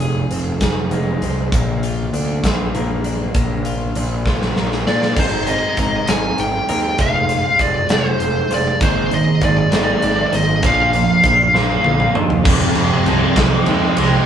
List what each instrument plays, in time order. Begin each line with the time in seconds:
Already playing: picked electric bass F1, clean electric guitar F2
0.00 clean electric guitar G#4, closed hi-hat
0.31 picked electric bass F1, clean electric guitar C4, closed hi-hat
0.61 clean electric guitar G#4, kick, snare, closed hi-hat
0.91 picked electric bass F1, clean electric guitar G#3, closed hi-hat
1.21 picked electric bass C2, clean electric guitar C4, closed hi-hat
1.52 picked electric bass A#1, clean electric guitar A#2, kick, closed hi-hat
1.83 clean electric guitar F4, closed hi-hat
2.13 picked electric bass D2, clean electric guitar D4, closed hi-hat
2.43 picked electric bass A#1, clean electric guitar F4, kick, snare, closed hi-hat
2.75 picked electric bass A#1, clean electric guitar A#3, closed hi-hat
3.04 clean electric guitar D4, closed hi-hat
3.34 picked electric bass A#1, clean electric guitar A#2, kick, closed hi-hat
3.65 clean electric guitar F4, closed hi-hat
3.95 picked electric bass A#1, clean electric guitar D4, closed hi-hat
4.26 clean electric guitar F4, kick, snare
4.42 snare
4.56 picked electric bass A#1, clean electric guitar A#3, snare
4.72 snare
4.87 picked electric bass A#2, clean electric guitar D4, lead electric guitar D5, snare
5.02 snare
5.16 picked electric bass G#1, clean electric guitar G#3 C4 D#4 A#4, lead electric guitar C5, kick, crash
5.47 clean electric guitar G#3 C4 D#4 A#4, lead electric guitar D#5, closed hi-hat
5.77 picked electric bass G#1, clean electric guitar G#3 C4 D#4 A#4, kick, closed hi-hat
6.07 picked electric bass G#1, clean electric guitar G#3 C4 D#4 A#4, lead electric guitar G#5, snare, closed hi-hat
6.38 picked electric bass G#1, lead electric guitar G5, closed hi-hat
6.69 picked electric bass D#2, clean electric guitar G#3 C4 D#4 A#4, closed hi-hat
6.98 picked electric bass F1, clean electric guitar G3 G#3 F4 C5, lead electric guitar F5, kick, closed hi-hat
7.29 clean electric guitar G3 G#3 F4 C5, closed hi-hat
7.59 picked electric bass F1, clean electric guitar G3 G#3 F4 C5, lead electric guitar D5, kick, closed hi-hat
7.89 picked electric bass F1, clean electric guitar G3 G#3 F4 C5, lead electric guitar C5, snare, closed hi-hat
8.20 picked electric bass F1, closed hi-hat
8.50 picked electric bass F1, clean electric guitar G3 G#3 F4 C5, lead electric guitar D5, closed hi-hat
8.81 picked electric bass G#1, distorted electric guitar G#2 D#3 G#3, clean electric guitar A#3 D#4 G#4 C5, lead electric guitar C5, kick, closed hi-hat
9.11 distorted electric guitar G#2 D#3, clean electric guitar A#3 D#4 G#4 C5, lead electric guitar D#5, closed hi-hat
9.41 picked electric bass G#1, distorted electric guitar G#2 D#3, clean electric guitar A#3 D#4 G#4 C5, lead electric guitar D5, kick, closed hi-hat
9.70 picked electric bass G#1, distorted electric guitar G#2 D#3 G#3, clean electric guitar A#3 D#4 G#4 C5, snare, closed hi-hat
10.02 picked electric bass G#1, closed hi-hat
10.26 lead electric guitar D5
10.32 picked electric bass G#1, distorted electric guitar G#2 D#3, clean electric guitar A#3 D#4 G#4 C5, lead electric guitar D#5, closed hi-hat
10.63 picked electric bass A#1, distorted electric guitar A#2 F3 A#3, clean electric guitar A#3 D4 F4 C5, lead electric guitar F5, kick, closed hi-hat
10.93 distorted electric guitar A#2 F3, clean electric guitar A#3 D4 F4 C5, closed hi-hat
11.23 picked electric bass A#1, distorted electric guitar A#2 F3, clean electric guitar A#3 D4 F4 C5, kick, closed hi-hat
11.54 picked electric bass A#1, distorted electric guitar A#2 F3 A#3, clean electric guitar A#3 D4 F4 C5, snare
11.84 picked electric bass A#1, high tom
12.00 mid tom
12.14 picked electric bass D#2, distorted electric guitar A#2 F3, clean electric guitar A#3 D4 F4 C5, mid tom
12.30 floor tom
12.43 picked electric bass F1, distorted electric guitar F2 C3 F3 G#3 C4, kick, crash
12.74 picked electric bass F1, distorted electric guitar F3 G#3 C4, ride
13.05 picked electric bass C2, distorted electric guitar C3 F3 G#3 C4, ride
13.35 picked electric bass C2, overdriven electric guitar F2 C3, distorted electric guitar F3 G#3 C4, kick, snare, ride
13.66 picked electric bass D#2, distorted electric guitar C3 F3 G#3 C4, lead electric guitar G#3, ride
13.97 picked electric bass C2, distorted electric guitar F3 G#3 C4, ride